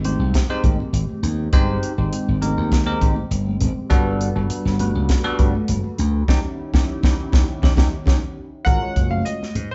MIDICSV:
0, 0, Header, 1, 7, 480
1, 0, Start_track
1, 0, Tempo, 594648
1, 1237, Time_signature, 4, 2, 24, 8
1, 7869, End_track
2, 0, Start_track
2, 0, Title_t, "Grand piano"
2, 0, Program_c, 0, 0
2, 6980, Note_on_c, 0, 78, 102
2, 7326, Note_off_c, 0, 78, 0
2, 7351, Note_on_c, 0, 77, 69
2, 7461, Note_off_c, 0, 77, 0
2, 7469, Note_on_c, 0, 75, 69
2, 7811, Note_off_c, 0, 75, 0
2, 7841, Note_on_c, 0, 72, 72
2, 7869, Note_off_c, 0, 72, 0
2, 7869, End_track
3, 0, Start_track
3, 0, Title_t, "Analog synth pad"
3, 0, Program_c, 1, 89
3, 0, Note_on_c, 1, 56, 72
3, 0, Note_on_c, 1, 60, 68
3, 0, Note_on_c, 1, 67, 85
3, 3123, Note_off_c, 1, 60, 0
3, 3124, Note_off_c, 1, 56, 0
3, 3124, Note_off_c, 1, 67, 0
3, 3146, Note_on_c, 1, 55, 74
3, 3150, Note_on_c, 1, 71, 96
3, 3152, Note_on_c, 1, 66, 72
3, 3154, Note_on_c, 1, 69, 69
3, 5051, Note_off_c, 1, 55, 0
3, 5053, Note_off_c, 1, 71, 0
3, 5054, Note_off_c, 1, 66, 0
3, 5055, Note_off_c, 1, 69, 0
3, 5071, Note_on_c, 1, 67, 90
3, 5073, Note_on_c, 1, 61, 76
3, 5076, Note_on_c, 1, 51, 77
3, 5076, Note_on_c, 1, 64, 78
3, 6972, Note_off_c, 1, 67, 0
3, 6973, Note_off_c, 1, 61, 0
3, 6974, Note_off_c, 1, 51, 0
3, 6975, Note_off_c, 1, 64, 0
3, 7869, End_track
4, 0, Start_track
4, 0, Title_t, "Tine electric piano"
4, 0, Program_c, 2, 4
4, 39, Note_on_c, 2, 56, 77
4, 39, Note_on_c, 2, 63, 68
4, 40, Note_on_c, 2, 67, 81
4, 41, Note_on_c, 2, 60, 72
4, 41, Note_on_c, 2, 72, 95
4, 346, Note_off_c, 2, 56, 0
4, 346, Note_off_c, 2, 63, 0
4, 346, Note_off_c, 2, 67, 0
4, 346, Note_off_c, 2, 72, 0
4, 347, Note_off_c, 2, 60, 0
4, 402, Note_on_c, 2, 56, 104
4, 404, Note_on_c, 2, 63, 100
4, 404, Note_on_c, 2, 67, 86
4, 405, Note_on_c, 2, 72, 115
4, 406, Note_on_c, 2, 60, 94
4, 499, Note_off_c, 2, 56, 0
4, 500, Note_off_c, 2, 63, 0
4, 500, Note_off_c, 2, 67, 0
4, 500, Note_off_c, 2, 72, 0
4, 501, Note_off_c, 2, 60, 0
4, 517, Note_on_c, 2, 60, 65
4, 518, Note_on_c, 2, 56, 70
4, 521, Note_on_c, 2, 67, 67
4, 623, Note_off_c, 2, 60, 0
4, 624, Note_off_c, 2, 56, 0
4, 625, Note_off_c, 2, 67, 0
4, 646, Note_on_c, 2, 67, 31
4, 648, Note_on_c, 2, 70, 35
4, 699, Note_off_c, 2, 67, 0
4, 700, Note_off_c, 2, 70, 0
4, 993, Note_on_c, 2, 67, 27
4, 996, Note_on_c, 2, 70, 30
4, 1055, Note_off_c, 2, 67, 0
4, 1057, Note_off_c, 2, 70, 0
4, 1236, Note_on_c, 2, 56, 117
4, 1237, Note_on_c, 2, 67, 108
4, 1239, Note_on_c, 2, 60, 97
4, 1239, Note_on_c, 2, 63, 102
4, 1240, Note_on_c, 2, 72, 127
4, 1544, Note_off_c, 2, 56, 0
4, 1545, Note_off_c, 2, 67, 0
4, 1546, Note_off_c, 2, 60, 0
4, 1546, Note_off_c, 2, 63, 0
4, 1547, Note_off_c, 2, 72, 0
4, 1598, Note_on_c, 2, 56, 74
4, 1599, Note_on_c, 2, 67, 70
4, 1600, Note_on_c, 2, 60, 68
4, 1601, Note_on_c, 2, 72, 83
4, 1602, Note_on_c, 2, 63, 64
4, 1902, Note_off_c, 2, 56, 0
4, 1903, Note_off_c, 2, 60, 0
4, 1903, Note_off_c, 2, 67, 0
4, 1904, Note_off_c, 2, 63, 0
4, 1904, Note_off_c, 2, 72, 0
4, 1948, Note_on_c, 2, 60, 70
4, 1950, Note_on_c, 2, 67, 81
4, 1951, Note_on_c, 2, 56, 85
4, 1951, Note_on_c, 2, 63, 81
4, 1953, Note_on_c, 2, 70, 92
4, 2261, Note_off_c, 2, 60, 0
4, 2262, Note_off_c, 2, 56, 0
4, 2262, Note_off_c, 2, 63, 0
4, 2262, Note_off_c, 2, 67, 0
4, 2263, Note_off_c, 2, 70, 0
4, 2310, Note_on_c, 2, 56, 94
4, 2311, Note_on_c, 2, 60, 93
4, 2311, Note_on_c, 2, 63, 97
4, 2311, Note_on_c, 2, 67, 97
4, 2312, Note_on_c, 2, 70, 111
4, 2413, Note_off_c, 2, 56, 0
4, 2414, Note_off_c, 2, 60, 0
4, 2414, Note_off_c, 2, 63, 0
4, 2414, Note_off_c, 2, 67, 0
4, 2415, Note_off_c, 2, 70, 0
4, 2430, Note_on_c, 2, 63, 72
4, 2431, Note_on_c, 2, 56, 72
4, 2431, Note_on_c, 2, 60, 74
4, 2432, Note_on_c, 2, 67, 69
4, 2432, Note_on_c, 2, 72, 78
4, 2536, Note_off_c, 2, 67, 0
4, 2539, Note_off_c, 2, 72, 0
4, 2540, Note_off_c, 2, 63, 0
4, 2541, Note_off_c, 2, 56, 0
4, 2541, Note_off_c, 2, 60, 0
4, 2546, Note_on_c, 2, 67, 34
4, 2548, Note_on_c, 2, 72, 38
4, 2610, Note_off_c, 2, 67, 0
4, 2611, Note_off_c, 2, 72, 0
4, 2905, Note_on_c, 2, 67, 28
4, 2908, Note_on_c, 2, 72, 34
4, 2972, Note_off_c, 2, 67, 0
4, 2973, Note_off_c, 2, 72, 0
4, 3146, Note_on_c, 2, 55, 111
4, 3146, Note_on_c, 2, 59, 105
4, 3147, Note_on_c, 2, 62, 104
4, 3149, Note_on_c, 2, 69, 127
4, 3150, Note_on_c, 2, 66, 100
4, 3459, Note_off_c, 2, 55, 0
4, 3459, Note_off_c, 2, 59, 0
4, 3460, Note_off_c, 2, 62, 0
4, 3461, Note_off_c, 2, 66, 0
4, 3461, Note_off_c, 2, 69, 0
4, 3516, Note_on_c, 2, 55, 84
4, 3517, Note_on_c, 2, 59, 67
4, 3517, Note_on_c, 2, 62, 75
4, 3518, Note_on_c, 2, 69, 80
4, 3519, Note_on_c, 2, 66, 68
4, 3821, Note_off_c, 2, 55, 0
4, 3822, Note_off_c, 2, 59, 0
4, 3822, Note_off_c, 2, 62, 0
4, 3822, Note_off_c, 2, 66, 0
4, 3822, Note_off_c, 2, 69, 0
4, 3871, Note_on_c, 2, 59, 78
4, 3872, Note_on_c, 2, 55, 83
4, 3874, Note_on_c, 2, 62, 81
4, 3875, Note_on_c, 2, 66, 78
4, 3877, Note_on_c, 2, 71, 93
4, 4182, Note_off_c, 2, 55, 0
4, 4182, Note_off_c, 2, 59, 0
4, 4183, Note_off_c, 2, 62, 0
4, 4184, Note_off_c, 2, 66, 0
4, 4185, Note_off_c, 2, 71, 0
4, 4230, Note_on_c, 2, 59, 100
4, 4231, Note_on_c, 2, 55, 118
4, 4231, Note_on_c, 2, 62, 100
4, 4232, Note_on_c, 2, 66, 90
4, 4233, Note_on_c, 2, 69, 125
4, 4333, Note_off_c, 2, 59, 0
4, 4334, Note_off_c, 2, 55, 0
4, 4334, Note_off_c, 2, 62, 0
4, 4334, Note_off_c, 2, 66, 0
4, 4335, Note_off_c, 2, 69, 0
4, 4347, Note_on_c, 2, 62, 69
4, 4348, Note_on_c, 2, 55, 80
4, 4348, Note_on_c, 2, 59, 67
4, 4350, Note_on_c, 2, 66, 68
4, 4351, Note_on_c, 2, 71, 77
4, 4458, Note_off_c, 2, 62, 0
4, 4459, Note_off_c, 2, 55, 0
4, 4459, Note_off_c, 2, 59, 0
4, 4460, Note_off_c, 2, 66, 0
4, 4460, Note_off_c, 2, 71, 0
4, 4478, Note_on_c, 2, 66, 33
4, 4479, Note_on_c, 2, 69, 37
4, 4535, Note_off_c, 2, 66, 0
4, 4536, Note_off_c, 2, 69, 0
4, 4828, Note_on_c, 2, 66, 31
4, 4832, Note_on_c, 2, 69, 35
4, 4892, Note_off_c, 2, 66, 0
4, 4894, Note_off_c, 2, 69, 0
4, 5072, Note_on_c, 2, 61, 98
4, 5073, Note_on_c, 2, 67, 96
4, 5074, Note_on_c, 2, 63, 108
4, 5154, Note_off_c, 2, 61, 0
4, 5155, Note_off_c, 2, 63, 0
4, 5155, Note_off_c, 2, 67, 0
4, 5437, Note_on_c, 2, 61, 82
4, 5439, Note_on_c, 2, 67, 88
4, 5440, Note_on_c, 2, 63, 75
4, 5512, Note_off_c, 2, 61, 0
4, 5513, Note_off_c, 2, 63, 0
4, 5513, Note_off_c, 2, 67, 0
4, 5686, Note_on_c, 2, 63, 79
4, 5687, Note_on_c, 2, 61, 90
4, 5688, Note_on_c, 2, 67, 92
4, 5757, Note_off_c, 2, 63, 0
4, 5758, Note_off_c, 2, 61, 0
4, 5759, Note_off_c, 2, 67, 0
4, 5921, Note_on_c, 2, 63, 79
4, 5923, Note_on_c, 2, 61, 85
4, 5923, Note_on_c, 2, 67, 78
4, 5994, Note_off_c, 2, 63, 0
4, 5995, Note_off_c, 2, 61, 0
4, 5995, Note_off_c, 2, 67, 0
4, 6160, Note_on_c, 2, 61, 93
4, 6161, Note_on_c, 2, 63, 90
4, 6162, Note_on_c, 2, 67, 98
4, 6233, Note_off_c, 2, 61, 0
4, 6234, Note_off_c, 2, 63, 0
4, 6235, Note_off_c, 2, 67, 0
4, 6277, Note_on_c, 2, 61, 80
4, 6277, Note_on_c, 2, 63, 78
4, 6278, Note_on_c, 2, 67, 90
4, 6356, Note_off_c, 2, 61, 0
4, 6357, Note_off_c, 2, 63, 0
4, 6357, Note_off_c, 2, 67, 0
4, 6516, Note_on_c, 2, 61, 91
4, 6517, Note_on_c, 2, 63, 79
4, 6519, Note_on_c, 2, 67, 83
4, 6595, Note_off_c, 2, 61, 0
4, 6596, Note_off_c, 2, 63, 0
4, 6597, Note_off_c, 2, 67, 0
4, 6996, Note_on_c, 2, 61, 79
4, 6996, Note_on_c, 2, 65, 73
4, 6997, Note_on_c, 2, 56, 88
4, 6998, Note_on_c, 2, 70, 93
4, 6999, Note_on_c, 2, 66, 79
4, 7101, Note_off_c, 2, 61, 0
4, 7101, Note_off_c, 2, 65, 0
4, 7102, Note_off_c, 2, 56, 0
4, 7102, Note_off_c, 2, 70, 0
4, 7103, Note_off_c, 2, 66, 0
4, 7118, Note_on_c, 2, 56, 62
4, 7120, Note_on_c, 2, 65, 53
4, 7121, Note_on_c, 2, 61, 54
4, 7122, Note_on_c, 2, 66, 50
4, 7124, Note_on_c, 2, 73, 56
4, 7624, Note_off_c, 2, 56, 0
4, 7625, Note_off_c, 2, 65, 0
4, 7626, Note_off_c, 2, 61, 0
4, 7627, Note_off_c, 2, 66, 0
4, 7628, Note_off_c, 2, 73, 0
4, 7712, Note_on_c, 2, 66, 26
4, 7714, Note_on_c, 2, 73, 26
4, 7773, Note_off_c, 2, 66, 0
4, 7774, Note_off_c, 2, 73, 0
4, 7869, End_track
5, 0, Start_track
5, 0, Title_t, "Slap bass"
5, 0, Program_c, 3, 36
5, 0, Note_on_c, 3, 32, 83
5, 118, Note_off_c, 3, 32, 0
5, 156, Note_on_c, 3, 36, 64
5, 254, Note_off_c, 3, 36, 0
5, 512, Note_on_c, 3, 32, 91
5, 619, Note_off_c, 3, 32, 0
5, 750, Note_on_c, 3, 32, 78
5, 858, Note_off_c, 3, 32, 0
5, 992, Note_on_c, 3, 39, 74
5, 1194, Note_off_c, 3, 39, 0
5, 1233, Note_on_c, 3, 31, 86
5, 1435, Note_off_c, 3, 31, 0
5, 1598, Note_on_c, 3, 32, 82
5, 1696, Note_off_c, 3, 32, 0
5, 1842, Note_on_c, 3, 32, 71
5, 2043, Note_off_c, 3, 32, 0
5, 2077, Note_on_c, 3, 39, 74
5, 2376, Note_off_c, 3, 39, 0
5, 2436, Note_on_c, 3, 32, 87
5, 2542, Note_off_c, 3, 32, 0
5, 2670, Note_on_c, 3, 31, 93
5, 2874, Note_off_c, 3, 31, 0
5, 2912, Note_on_c, 3, 32, 68
5, 3019, Note_off_c, 3, 32, 0
5, 3155, Note_on_c, 3, 31, 86
5, 3461, Note_off_c, 3, 31, 0
5, 3518, Note_on_c, 3, 31, 77
5, 3616, Note_off_c, 3, 31, 0
5, 3756, Note_on_c, 3, 31, 90
5, 3959, Note_off_c, 3, 31, 0
5, 3995, Note_on_c, 3, 37, 76
5, 4094, Note_off_c, 3, 37, 0
5, 4350, Note_on_c, 3, 31, 85
5, 4458, Note_off_c, 3, 31, 0
5, 4591, Note_on_c, 3, 31, 85
5, 4698, Note_off_c, 3, 31, 0
5, 4836, Note_on_c, 3, 38, 81
5, 5036, Note_off_c, 3, 38, 0
5, 5071, Note_on_c, 3, 39, 85
5, 5167, Note_off_c, 3, 39, 0
5, 5439, Note_on_c, 3, 39, 92
5, 5525, Note_off_c, 3, 39, 0
5, 5677, Note_on_c, 3, 39, 85
5, 5764, Note_off_c, 3, 39, 0
5, 5917, Note_on_c, 3, 39, 74
5, 6004, Note_off_c, 3, 39, 0
5, 6160, Note_on_c, 3, 39, 80
5, 6245, Note_off_c, 3, 39, 0
5, 6274, Note_on_c, 3, 39, 76
5, 6368, Note_off_c, 3, 39, 0
5, 6514, Note_on_c, 3, 39, 97
5, 6607, Note_off_c, 3, 39, 0
5, 6994, Note_on_c, 3, 32, 74
5, 7099, Note_off_c, 3, 32, 0
5, 7234, Note_on_c, 3, 30, 76
5, 7434, Note_off_c, 3, 30, 0
5, 7710, Note_on_c, 3, 44, 68
5, 7816, Note_off_c, 3, 44, 0
5, 7869, End_track
6, 0, Start_track
6, 0, Title_t, "Muted slap bass strokes"
6, 396, Note_on_c, 9, 29, 31
6, 477, Note_off_c, 9, 29, 0
6, 879, Note_on_c, 9, 29, 36
6, 960, Note_off_c, 9, 29, 0
6, 3039, Note_on_c, 9, 29, 35
6, 3120, Note_off_c, 9, 29, 0
6, 3633, Note_on_c, 9, 29, 39
6, 3714, Note_off_c, 9, 29, 0
6, 4238, Note_on_c, 9, 29, 36
6, 4319, Note_off_c, 9, 29, 0
6, 7117, Note_on_c, 9, 29, 30
6, 7198, Note_off_c, 9, 29, 0
6, 7869, End_track
7, 0, Start_track
7, 0, Title_t, "Drums"
7, 36, Note_on_c, 9, 42, 61
7, 36, Note_on_c, 9, 63, 63
7, 36, Note_on_c, 9, 64, 68
7, 116, Note_off_c, 9, 63, 0
7, 116, Note_off_c, 9, 64, 0
7, 117, Note_off_c, 9, 42, 0
7, 275, Note_on_c, 9, 36, 73
7, 278, Note_on_c, 9, 42, 76
7, 281, Note_on_c, 9, 64, 61
7, 285, Note_on_c, 9, 38, 96
7, 356, Note_off_c, 9, 36, 0
7, 358, Note_off_c, 9, 42, 0
7, 362, Note_off_c, 9, 64, 0
7, 366, Note_off_c, 9, 38, 0
7, 515, Note_on_c, 9, 36, 70
7, 515, Note_on_c, 9, 42, 56
7, 522, Note_on_c, 9, 63, 54
7, 522, Note_on_c, 9, 64, 61
7, 596, Note_off_c, 9, 36, 0
7, 596, Note_off_c, 9, 42, 0
7, 603, Note_off_c, 9, 63, 0
7, 603, Note_off_c, 9, 64, 0
7, 646, Note_on_c, 9, 63, 64
7, 727, Note_off_c, 9, 63, 0
7, 757, Note_on_c, 9, 42, 75
7, 838, Note_off_c, 9, 42, 0
7, 883, Note_on_c, 9, 63, 57
7, 963, Note_off_c, 9, 63, 0
7, 995, Note_on_c, 9, 64, 65
7, 997, Note_on_c, 9, 42, 58
7, 1076, Note_off_c, 9, 64, 0
7, 1077, Note_off_c, 9, 42, 0
7, 1233, Note_on_c, 9, 42, 77
7, 1234, Note_on_c, 9, 36, 98
7, 1314, Note_off_c, 9, 42, 0
7, 1315, Note_off_c, 9, 36, 0
7, 1477, Note_on_c, 9, 42, 53
7, 1557, Note_off_c, 9, 42, 0
7, 1717, Note_on_c, 9, 42, 75
7, 1797, Note_off_c, 9, 42, 0
7, 1954, Note_on_c, 9, 63, 68
7, 1954, Note_on_c, 9, 64, 83
7, 1955, Note_on_c, 9, 42, 57
7, 2035, Note_off_c, 9, 63, 0
7, 2035, Note_off_c, 9, 64, 0
7, 2036, Note_off_c, 9, 42, 0
7, 2190, Note_on_c, 9, 64, 66
7, 2193, Note_on_c, 9, 36, 75
7, 2193, Note_on_c, 9, 42, 64
7, 2201, Note_on_c, 9, 38, 90
7, 2271, Note_off_c, 9, 64, 0
7, 2274, Note_off_c, 9, 36, 0
7, 2274, Note_off_c, 9, 42, 0
7, 2281, Note_off_c, 9, 38, 0
7, 2431, Note_on_c, 9, 63, 55
7, 2431, Note_on_c, 9, 64, 66
7, 2434, Note_on_c, 9, 36, 77
7, 2436, Note_on_c, 9, 42, 55
7, 2512, Note_off_c, 9, 63, 0
7, 2512, Note_off_c, 9, 64, 0
7, 2514, Note_off_c, 9, 36, 0
7, 2517, Note_off_c, 9, 42, 0
7, 2552, Note_on_c, 9, 63, 80
7, 2632, Note_off_c, 9, 63, 0
7, 2675, Note_on_c, 9, 42, 74
7, 2756, Note_off_c, 9, 42, 0
7, 2794, Note_on_c, 9, 63, 66
7, 2874, Note_off_c, 9, 63, 0
7, 2911, Note_on_c, 9, 42, 55
7, 2911, Note_on_c, 9, 64, 74
7, 2991, Note_off_c, 9, 42, 0
7, 2992, Note_off_c, 9, 64, 0
7, 3154, Note_on_c, 9, 36, 97
7, 3156, Note_on_c, 9, 42, 68
7, 3234, Note_off_c, 9, 36, 0
7, 3237, Note_off_c, 9, 42, 0
7, 3396, Note_on_c, 9, 42, 55
7, 3477, Note_off_c, 9, 42, 0
7, 3632, Note_on_c, 9, 42, 80
7, 3713, Note_off_c, 9, 42, 0
7, 3765, Note_on_c, 9, 38, 33
7, 3846, Note_off_c, 9, 38, 0
7, 3870, Note_on_c, 9, 42, 56
7, 3871, Note_on_c, 9, 63, 80
7, 3871, Note_on_c, 9, 64, 72
7, 3950, Note_off_c, 9, 42, 0
7, 3952, Note_off_c, 9, 63, 0
7, 3952, Note_off_c, 9, 64, 0
7, 4108, Note_on_c, 9, 42, 79
7, 4111, Note_on_c, 9, 36, 76
7, 4111, Note_on_c, 9, 64, 64
7, 4115, Note_on_c, 9, 38, 96
7, 4188, Note_off_c, 9, 42, 0
7, 4191, Note_off_c, 9, 64, 0
7, 4192, Note_off_c, 9, 36, 0
7, 4196, Note_off_c, 9, 38, 0
7, 4349, Note_on_c, 9, 42, 60
7, 4351, Note_on_c, 9, 36, 75
7, 4357, Note_on_c, 9, 63, 54
7, 4357, Note_on_c, 9, 64, 56
7, 4430, Note_off_c, 9, 42, 0
7, 4431, Note_off_c, 9, 36, 0
7, 4438, Note_off_c, 9, 63, 0
7, 4438, Note_off_c, 9, 64, 0
7, 4482, Note_on_c, 9, 63, 70
7, 4563, Note_off_c, 9, 63, 0
7, 4586, Note_on_c, 9, 42, 84
7, 4667, Note_off_c, 9, 42, 0
7, 4714, Note_on_c, 9, 63, 63
7, 4795, Note_off_c, 9, 63, 0
7, 4830, Note_on_c, 9, 64, 61
7, 4831, Note_on_c, 9, 42, 57
7, 4911, Note_off_c, 9, 42, 0
7, 4911, Note_off_c, 9, 64, 0
7, 5071, Note_on_c, 9, 64, 99
7, 5072, Note_on_c, 9, 36, 80
7, 5078, Note_on_c, 9, 38, 92
7, 5151, Note_off_c, 9, 64, 0
7, 5152, Note_off_c, 9, 36, 0
7, 5159, Note_off_c, 9, 38, 0
7, 5438, Note_on_c, 9, 36, 77
7, 5440, Note_on_c, 9, 64, 91
7, 5445, Note_on_c, 9, 38, 77
7, 5518, Note_off_c, 9, 36, 0
7, 5520, Note_off_c, 9, 64, 0
7, 5525, Note_off_c, 9, 38, 0
7, 5675, Note_on_c, 9, 64, 92
7, 5679, Note_on_c, 9, 36, 89
7, 5687, Note_on_c, 9, 38, 87
7, 5756, Note_off_c, 9, 64, 0
7, 5760, Note_off_c, 9, 36, 0
7, 5767, Note_off_c, 9, 38, 0
7, 5912, Note_on_c, 9, 64, 93
7, 5919, Note_on_c, 9, 36, 98
7, 5925, Note_on_c, 9, 38, 97
7, 5992, Note_off_c, 9, 64, 0
7, 6000, Note_off_c, 9, 36, 0
7, 6006, Note_off_c, 9, 38, 0
7, 6152, Note_on_c, 9, 64, 97
7, 6160, Note_on_c, 9, 36, 84
7, 6167, Note_on_c, 9, 38, 76
7, 6233, Note_off_c, 9, 64, 0
7, 6240, Note_off_c, 9, 36, 0
7, 6248, Note_off_c, 9, 38, 0
7, 6270, Note_on_c, 9, 64, 89
7, 6274, Note_on_c, 9, 36, 89
7, 6281, Note_on_c, 9, 38, 90
7, 6351, Note_off_c, 9, 64, 0
7, 6355, Note_off_c, 9, 36, 0
7, 6362, Note_off_c, 9, 38, 0
7, 6504, Note_on_c, 9, 64, 95
7, 6514, Note_on_c, 9, 36, 87
7, 6521, Note_on_c, 9, 38, 81
7, 6584, Note_off_c, 9, 64, 0
7, 6595, Note_off_c, 9, 36, 0
7, 6602, Note_off_c, 9, 38, 0
7, 6993, Note_on_c, 9, 42, 63
7, 6994, Note_on_c, 9, 36, 85
7, 7074, Note_off_c, 9, 36, 0
7, 7074, Note_off_c, 9, 42, 0
7, 7234, Note_on_c, 9, 36, 66
7, 7235, Note_on_c, 9, 42, 53
7, 7315, Note_off_c, 9, 36, 0
7, 7316, Note_off_c, 9, 42, 0
7, 7358, Note_on_c, 9, 63, 66
7, 7438, Note_off_c, 9, 63, 0
7, 7473, Note_on_c, 9, 42, 69
7, 7554, Note_off_c, 9, 42, 0
7, 7599, Note_on_c, 9, 63, 53
7, 7610, Note_on_c, 9, 38, 29
7, 7680, Note_off_c, 9, 63, 0
7, 7691, Note_off_c, 9, 38, 0
7, 7713, Note_on_c, 9, 42, 56
7, 7714, Note_on_c, 9, 63, 62
7, 7714, Note_on_c, 9, 64, 75
7, 7793, Note_off_c, 9, 42, 0
7, 7795, Note_off_c, 9, 63, 0
7, 7795, Note_off_c, 9, 64, 0
7, 7869, End_track
0, 0, End_of_file